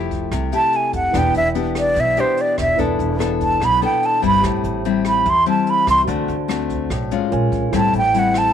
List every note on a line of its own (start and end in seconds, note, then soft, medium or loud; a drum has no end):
0.00 0.28 F1 medium
0.00 0.30 F3 medium
0.00 0.49 A3 medium
0.00 0.50 E4 medium
0.00 0.50 G4 medium
0.00 1.11 A4 medium
0.00 1.12 E5 medium
0.00 1.13 G5 medium
0.11 kick medium
0.11 closed hi-hat soft
0.31 0.51 C2 loud
0.31 1.12 C3 medium
0.31 kick medium
0.31 cross-stick soft
0.31 closed hi-hat medium
0.52 1.11 A3 medium
0.52 1.11 E4 medium
0.52 1.11 G4 medium
0.52 0.78 A5 medium
0.52 closed hi-hat soft
0.73 0.95 G#5 medium
0.73 closed hi-hat soft
0.93 1.13 F1 medium
0.93 1.19 F#5 medium
0.93 kick medium
0.93 closed hi-hat soft
1.11 1.33 E1 loud
1.11 1.95 E3 medium
1.11 1.41 B3 medium
1.11 1.41 D4 medium
1.11 2.74 E4 medium
1.11 2.75 B4 soft
1.11 2.76 D5 soft
1.11 kick medium
1.11 cross-stick medium
1.11 closed hi-hat medium
1.15 1.41 G4 medium
1.15 2.77 G5 medium
1.15 1.37 G5 medium
1.34 1.93 E1 medium
1.34 1.49 E5 medium
1.34 closed hi-hat soft
1.55 1.96 B3 medium
1.55 1.96 D4 medium
1.55 1.97 G4 medium
1.55 closed hi-hat soft
1.75 2.02 D5 medium
1.75 cross-stick medium
1.75 closed hi-hat soft
1.96 2.16 B1 medium
1.96 2.77 B2 medium
1.96 kick medium
1.96 closed hi-hat medium
2.00 2.22 E5 medium
2.17 2.76 B3 medium
2.17 2.76 D4 medium
2.17 2.76 G4 medium
2.17 2.43 C5 medium
2.17 closed hi-hat soft
2.37 2.60 D5 medium
2.37 closed hi-hat soft
2.58 2.77 E1 medium
2.58 2.79 E5 medium
2.58 kick medium
2.58 cross-stick medium
2.58 closed hi-hat soft
2.76 2.98 E1 medium
2.76 3.59 E3 medium
2.76 3.17 B3 medium
2.76 3.17 D4 medium
2.76 4.39 E4 medium
2.76 3.17 A4 medium
2.76 4.40 B4 soft
2.76 4.41 D5 soft
2.76 kick medium
2.76 closed hi-hat medium
2.81 4.42 A5 medium
2.99 3.57 E1 medium
2.99 closed hi-hat soft
3.19 3.60 B3 medium
3.19 3.60 D4 medium
3.19 3.61 A4 medium
3.19 cross-stick medium
3.19 closed hi-hat soft
3.41 3.66 A5 medium
3.41 kick medium
3.41 closed hi-hat soft
3.60 3.81 B1 loud
3.60 4.41 B2 medium
3.60 kick medium
3.60 cross-stick medium
3.60 closed hi-hat soft
3.65 3.84 B5 medium
3.82 4.20 B3 medium
3.82 4.20 D4 medium
3.82 4.20 A4 medium
3.82 4.07 G5 medium
3.82 closed hi-hat soft
4.03 4.25 A5 medium
4.03 closed hi-hat soft
4.22 4.42 G1 medium
4.22 4.81 G3 medium
4.22 4.81 C4 medium
4.22 4.81 E4 medium
4.22 kick medium
4.22 closed hi-hat soft
4.26 4.44 B5 medium
4.41 4.63 A1 medium
4.41 5.24 A2 medium
4.41 6.03 G4 medium
4.41 6.04 C5 soft
4.41 6.05 E5 soft
4.41 kick medium
4.41 cross-stick medium
4.41 closed hi-hat medium
4.47 6.06 A5 medium
4.64 5.22 A1 medium
4.64 closed hi-hat medium
4.85 5.26 G3 medium
4.85 5.26 C4 medium
4.85 5.26 E4 medium
4.85 closed hi-hat soft
5.05 5.31 B5 medium
5.05 cross-stick medium
5.05 closed hi-hat soft
5.25 5.45 E2 medium
5.25 6.06 E3 medium
5.25 kick medium
5.25 closed hi-hat soft
5.30 5.48 C6 medium
5.46 6.05 G3 medium
5.46 6.05 C4 medium
5.46 6.05 E4 medium
5.46 5.72 A5 medium
5.46 closed hi-hat soft
5.67 5.89 B5 medium
5.67 closed hi-hat soft
5.87 6.07 C2 medium
5.87 6.02 C6 medium
5.87 kick medium
5.87 cross-stick medium
5.87 closed hi-hat soft
6.04 6.27 D2 medium
6.04 6.88 D3 medium
6.04 6.34 A3 medium
6.04 6.34 C4 medium
6.04 7.27 F#4 medium
6.04 7.28 C5 medium
6.04 kick medium
6.04 closed hi-hat soft
6.08 6.35 F#4 medium
6.08 7.29 D5 soft
6.08 7.30 A5 medium
6.28 6.86 D2 medium
6.28 closed hi-hat soft
6.48 6.90 A3 soft
6.48 6.90 C4 soft
6.48 6.90 F#4 medium
6.48 cross-stick medium
6.48 closed hi-hat soft
6.70 kick soft
6.70 closed hi-hat soft
6.90 7.09 B1 medium
6.90 7.29 A2 medium
6.90 kick soft
6.90 cross-stick medium
6.90 closed hi-hat soft
7.11 7.70 G#3 medium
7.11 7.70 C#4 medium
7.11 7.70 F4 medium
7.11 closed hi-hat soft
7.30 7.51 A#1 loud
7.30 7.72 F4 medium
7.30 7.72 A#4 medium
7.30 7.73 C#5 medium
7.30 7.73 G#5 medium
7.30 closed hi-hat soft
7.52 7.71 A#1 medium
7.52 kick medium
7.52 closed hi-hat soft
7.70 7.92 A1 medium
7.70 8.53 A2 medium
7.70 7.99 G3 medium
7.70 7.99 C4 medium
7.70 8.53 E4 medium
7.70 7.99 E4 medium
7.70 8.53 A4 soft
7.70 8.53 C5 soft
7.70 kick medium
7.70 cross-stick medium
7.70 closed hi-hat medium
7.76 8.53 G5 medium
7.76 7.94 A5 medium
7.93 8.51 A1 medium
7.93 closed hi-hat soft
7.97 8.20 G5 medium
8.14 8.53 G3 medium
8.14 8.53 C4 soft
8.14 8.53 E4 medium
8.14 closed hi-hat medium
8.19 8.40 F#5 medium
8.34 8.53 A5 loud
8.34 cross-stick medium
8.34 closed hi-hat soft